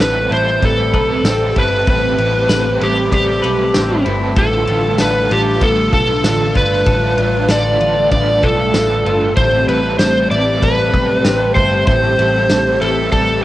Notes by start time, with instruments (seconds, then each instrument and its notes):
Already playing: clean electric guitar A2 C4 E4 B4, string machine G3 A3 C4 G4
0.00 picked electric bass A1, overdriven electric guitar A2 G3 A3 C4 A4 B4, snare, ride, tambourine
0.30 picked electric bass A1, overdriven electric guitar G3 C4 A4, clean electric guitar E4, electric slide guitar C5, ride
0.61 picked electric bass A1, overdriven electric guitar G3 C4 A4 B4, kick, ride
0.93 picked electric bass B1, overdriven electric guitar G3 C4 A4 B4, kick, ride
1.24 picked electric bass A1, overdriven electric guitar A2 G3 A3 C4 A4 B4, snare, ride, tambourine
1.56 picked electric bass G1, overdriven electric guitar G3 C4 A4 B4, clean electric guitar E4, kick, ride
1.87 picked electric bass A1, overdriven electric guitar A2 G3 A3 C4 A4 B4, kick, ride
2.18 picked electric bass A1, overdriven electric guitar G3 C4 A4 B4, clean electric guitar E4, ride
2.49 picked electric bass A1, overdriven electric guitar A2 G3 A3 C4 A4 B4, snare, ride, tambourine
2.80 picked electric bass A1, overdriven electric guitar G3 C4 A4 B4, clean electric guitar E4, electric slide guitar G4, ride
3.12 picked electric bass A1, overdriven electric guitar G3 C4 A4 B4, electric slide guitar G4, kick, ride
3.43 picked electric bass B1, overdriven electric guitar G3 C4 A4 B4, ride
3.74 picked electric bass A1, overdriven electric guitar A2 G3 A3 C4 A4 B4, snare, ride, tambourine
4.05 picked electric bass G1, overdriven electric guitar C4 A4 B4, clean electric guitar E4, ride
4.09 overdriven electric guitar G3
4.35 picked electric bass A1, overdriven electric guitar A2 D3 D4 F4 A4 B4, string machine D3 F4, kick, ride
4.67 picked electric bass A1, overdriven electric guitar F4 A4 B4, ride
4.72 overdriven electric guitar D4
4.98 picked electric bass A1, overdriven electric guitar A2 D3 D4 F4, clean electric guitar A4, snare, ride, tambourine
5.03 overdriven electric guitar A4 B4
5.30 picked electric bass A1, clean electric guitar F4, electric slide guitar G4, overdriven electric guitar A4 B4, ride
5.34 overdriven electric guitar D4 F4
5.61 picked electric bass A1, clean electric guitar B3, overdriven electric guitar D4 F4 B4, kick, ride
5.66 overdriven electric guitar A4
5.93 picked electric bass B1, overdriven electric guitar F4 A4 B4, kick, ride
5.97 overdriven electric guitar D4
6.24 picked electric bass A1, overdriven electric guitar A2 D3 D4 F4 A4 B4, snare, ride, tambourine
6.55 picked electric bass G1, overdriven electric guitar D4 F4 A4 B4, kick, ride
6.86 picked electric bass A1, overdriven electric guitar A2 D3 D4 F4 B4, kick, ride
6.90 overdriven electric guitar A4
7.17 picked electric bass A1, clean electric guitar F4, overdriven electric guitar A4 B4, ride
7.21 overdriven electric guitar D4 F4
7.48 picked electric bass A1, overdriven electric guitar A2 D3 D4 F4 A4 B4, electric slide guitar D5, snare, ride, tambourine
7.80 picked electric bass A1, overdriven electric guitar D4 F4 A4 B4, ride
8.11 picked electric bass A1, clean electric guitar B3, overdriven electric guitar D4 F4 A4 B4, electric slide guitar D5, kick, ride
8.43 picked electric bass B1, overdriven electric guitar D4 F4 A4 B4, kick, ride
8.74 picked electric bass A1, overdriven electric guitar A2 D3 D4 F4 A4 B4, snare, ride, tambourine
9.05 picked electric bass G1, overdriven electric guitar A4 B4, ride
9.09 overdriven electric guitar D4 F4
9.35 picked electric bass A1, overdriven electric guitar A2 G3 A3 C4, string machine C4 G4, electric slide guitar C5, kick, ride
9.39 overdriven electric guitar A4
9.68 picked electric bass A1, overdriven electric guitar C4 A4 B4, clean electric guitar E4, ride
9.72 overdriven electric guitar G3
9.99 picked electric bass A1, overdriven electric guitar A2 G3 A3 C4 A4, electric slide guitar C5, snare, ride, tambourine
10.30 picked electric bass A1, overdriven electric guitar C4 A4 B4, clean electric guitar E4, electric slide guitar D5, ride
10.35 overdriven electric guitar G3
10.62 picked electric bass A1, overdriven electric guitar G3 C4 A4 B4, kick, ride
10.93 picked electric bass B1, overdriven electric guitar G3 C4 A4 B4, kick, ride
11.24 picked electric bass A1, overdriven electric guitar A2 G3 A3 C4 A4 B4, snare, ride, tambourine
11.55 picked electric bass G1, overdriven electric guitar C4 A4, clean electric guitar E4, electric slide guitar C5, kick, ride
11.59 overdriven electric guitar G3
11.87 picked electric bass A1, overdriven electric guitar A2 G3 A3 C4 A4, electric slide guitar C5, kick, ride
12.18 picked electric bass A1, overdriven electric guitar G3 C4 A4, clean electric guitar E4, ride
12.49 picked electric bass A1, overdriven electric guitar A2 G3 A3 C4 A4, snare, ride, tambourine
12.80 picked electric bass A1, overdriven electric guitar G3 C4 A4 B4, clean electric guitar E4, ride
13.11 picked electric bass A1, overdriven electric guitar G3 C4 A4 B4, kick, ride